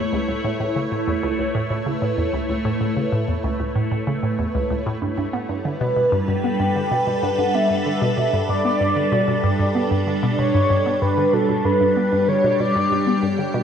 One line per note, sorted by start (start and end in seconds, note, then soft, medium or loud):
0.00 5.02 A3 medium
0.00 6.00 E4 medium
0.00 5.02 B4 medium
0.00 5.02 C#5 medium
0.13 0.25 C#2 loud
0.28 0.41 C#2 medium
0.44 0.53 A2 loud
0.60 0.68 A2 medium
0.76 0.81 C#3 medium
0.92 1.04 A2 medium
1.07 1.16 E2 medium
1.23 1.36 C#2 loud
1.39 1.52 C#2 medium
1.55 1.63 A2 loud
1.70 1.79 A2 medium
1.86 1.91 C#3 medium
2.02 2.15 A2 medium
2.18 2.26 E2 medium
2.33 2.46 C#2 medium
2.49 2.62 C#2 medium
2.65 2.74 A2 loud
2.81 2.89 A2 medium
2.97 3.02 C#3 medium
3.12 3.25 A2 medium
3.28 3.37 E2 medium
3.44 3.57 C#2 loud
3.60 3.73 C#2 medium
3.76 3.84 A2 loud
3.92 4.00 A2 medium
4.07 4.12 C#3 medium
4.23 4.36 A2 medium
4.39 4.47 E2 medium
4.55 4.67 C#2 medium
4.70 4.83 C#2 medium
4.86 4.95 A2 loud
5.02 5.11 G2 medium
5.02 13.63 G3 medium
5.18 5.26 G2 medium
5.34 5.39 B3 medium
5.34 11.37 B4 medium
5.49 5.62 G2 medium
5.56 13.63 D4 medium
5.65 5.74 D3 medium
5.65 6.30 B4 loud
5.78 5.94 B2 loud
5.78 11.83 A4 medium
5.97 6.09 B2 medium
6.12 6.21 G2 medium
6.28 6.37 G2 medium
6.28 7.25 G5 loud
6.44 6.49 B3 medium
6.60 6.73 G2 medium
6.76 6.84 D3 medium
6.91 7.04 B2 medium
7.07 7.20 B2 medium
7.23 7.31 G2 loud
7.23 7.32 F#5 loud
7.30 7.39 G5 medium
7.37 7.47 G2 medium
7.37 7.56 F#5 loud
7.55 7.60 B3 medium
7.55 8.49 E5 loud
7.70 7.83 G2 medium
7.86 7.95 D3 medium
8.02 8.15 B2 loud
8.18 8.30 B2 medium
8.33 8.42 G2 loud
8.49 8.58 G2 medium
8.49 9.72 D5 medium
8.65 8.70 B3 medium
8.81 8.94 G2 medium
8.97 9.05 D3 medium
9.12 9.25 B2 medium
9.28 9.41 B2 medium
9.44 9.52 G2 loud
9.60 9.68 G2 medium
9.75 9.81 B3 medium
9.91 10.04 G2 medium
10.07 10.16 D3 medium
10.23 10.36 B2 loud
10.32 10.40 D5 medium
10.39 10.52 B2 medium
10.39 11.03 C#5 loud
10.55 10.63 G2 loud
10.70 10.79 G2 medium
10.86 10.91 B3 medium
11.02 11.15 G2 medium
11.02 11.35 B4 medium
11.18 11.26 D3 medium
11.34 11.46 B2 loud
11.34 11.67 A4 medium
11.49 11.62 B2 medium
11.64 11.74 G2 medium
11.64 13.63 G4 medium
11.64 12.30 B4 loud
11.81 11.89 G2 medium
11.97 12.02 B3 medium
12.12 12.25 G2 medium
12.28 12.37 D3 medium
12.28 12.62 C#5 loud
12.44 12.57 B2 loud
12.60 12.73 B2 medium
12.60 13.23 D5 loud
12.76 12.84 G2 loud
12.91 13.00 G2 medium
13.07 13.12 B3 medium
13.23 13.36 G2 medium
13.39 13.47 D3 medium
13.54 13.63 B2 loud